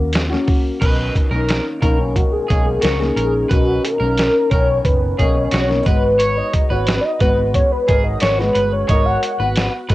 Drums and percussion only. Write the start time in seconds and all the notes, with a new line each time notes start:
0.13 snare, closed hi-hat
0.33 snare
0.47 kick, open hi-hat
0.82 kick, closed hi-hat, crash
1.15 kick, closed hi-hat
1.49 snare, closed hi-hat
1.82 kick, closed hi-hat
2.16 kick, closed hi-hat
2.50 kick, closed hi-hat
2.82 snare, closed hi-hat
3.02 snare
3.17 closed hi-hat
3.51 kick, closed hi-hat
3.85 closed hi-hat
4.17 snare, closed hi-hat
4.51 kick, closed hi-hat
4.85 kick, closed hi-hat
5.19 kick, closed hi-hat
5.52 snare, closed hi-hat
5.71 snare
5.86 kick, closed hi-hat
6.20 closed hi-hat
6.53 kick, closed hi-hat
6.87 snare, closed hi-hat
7.20 kick, closed hi-hat
7.54 kick, closed hi-hat
7.88 kick, closed hi-hat
8.20 snare, closed hi-hat
8.41 snare
8.55 closed hi-hat
8.89 kick, closed hi-hat
9.23 closed hi-hat
9.56 snare, closed hi-hat
9.90 kick, closed hi-hat